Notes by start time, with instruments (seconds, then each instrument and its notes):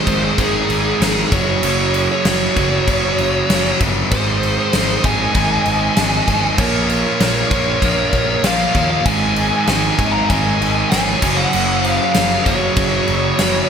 Already playing: lead electric guitar G#4 C5
0.06 picked electric bass G#1, overdriven electric guitar G#2 D#3 G#3, kick, crash
0.24 lead electric guitar G#4 C5
0.38 picked electric bass G#1, overdriven electric guitar G#2 D#3 G#3, lead electric guitar D#4 G#4, kick, crash
0.69 picked electric bass G#1, crash
1.01 picked electric bass G#1, overdriven electric guitar G#2 D#3 G#3, snare, crash
1.32 picked electric bass F#1, overdriven electric guitar F#2 C#3 F#3, lead electric guitar F#4 C#5, kick, crash
1.62 picked electric bass F#1, overdriven electric guitar F#2 C#3 F#3, crash
1.94 crash
2.12 lead electric guitar G#4 C#5
2.25 picked electric bass F#1, overdriven electric guitar F#2 C#3 F#3, lead electric guitar F#4 C#5, snare, crash
2.56 picked electric bass F#1, overdriven electric guitar F#2 C#3 F#3, kick, crash
2.87 picked electric bass F#1, overdriven electric guitar F#2 C#3 F#3, kick, crash
3.18 picked electric bass F#1, crash
3.50 picked electric bass F#1, overdriven electric guitar F#2 C#3 F#3, snare, crash
3.80 picked electric bass G1, overdriven electric guitar F#2 C#3 F#3, kick, crash
4.11 picked electric bass G#1, overdriven electric guitar G#2 D#3 G#3, lead electric guitar G#4 C5, kick, crash
4.43 crash
4.73 picked electric bass G#1, overdriven electric guitar G#2 D#3 G#3, snare, crash
5.04 picked electric bass G#1, overdriven electric guitar G#2 D#3 G#3, lead electric guitar D#5 G#5, kick, crash
5.35 picked electric bass G#1, overdriven electric guitar G#2 D#3 G#3, kick, crash
5.66 picked electric bass G#1, crash
5.97 picked electric bass G#1, overdriven electric guitar G#2 D#3 G#3, snare, crash
6.28 picked electric bass G#1, overdriven electric guitar G#2 D#3 G#3, kick, crash
6.58 picked electric bass A#1, overdriven electric guitar A#2 F3 A#3, lead electric guitar A#4 C#5, kick, crash
6.89 lead electric guitar A#4 C#5, crash
7.20 picked electric bass A#1, overdriven electric guitar A#2 F3 A#3, snare, crash
7.51 picked electric bass A#1, overdriven electric guitar A#2 F3 A#3, kick, crash
7.82 picked electric bass A#1, overdriven electric guitar A#2 F3 A#3, kick, crash
8.13 picked electric bass A#1, kick, crash
8.43 picked electric bass A#1, overdriven electric guitar A#2 F3 A#3, lead electric guitar C#5 F5, snare, crash
8.75 picked electric bass D#2, overdriven electric guitar A#2 F3 A#3, kick, crash
8.91 lead electric guitar C#5 F5
9.06 picked electric bass G#1, overdriven electric guitar G#2 D#3 G#3, lead electric guitar D#5 G#5, kick, crash
9.36 crash
9.67 picked electric bass G#1, overdriven electric guitar G#2 D#3 G#3, lead electric guitar D#5 G#5, snare, crash
9.99 picked electric bass G#1, overdriven electric guitar G#2 D#3 G#3, kick, crash
10.12 lead electric guitar F5 A#5
10.29 picked electric bass G#1, overdriven electric guitar G#2 D#3 G#3, lead electric guitar D#5 G#5, kick, crash
10.61 picked electric bass G#1, crash
10.75 lead electric guitar D#5 G#5
10.91 picked electric bass G#1, overdriven electric guitar G#2 D#3 G#3, lead electric guitar C#5 G#5, snare, crash
11.22 picked electric bass F#1, overdriven electric guitar F#2 C#3 F#3, kick, crash
11.37 lead electric guitar C#5 F#5
11.53 picked electric bass F#1, overdriven electric guitar F#2 C#3 F#3, crash
11.80 lead electric guitar C5 F5
11.84 crash
11.98 lead electric guitar C#5 F5
12.14 picked electric bass F#1, overdriven electric guitar F#2 C#3 F#3, snare, crash
12.46 picked electric bass F#1, overdriven electric guitar F#2 C#3 F#3, lead electric guitar F#4 C#5, kick, crash
12.76 picked electric bass F#1, overdriven electric guitar F#2 C#3 F#3, kick, crash
13.08 picked electric bass F#1, crash
13.38 picked electric bass F#1, overdriven electric guitar F#2 C#3 F#3, snare, crash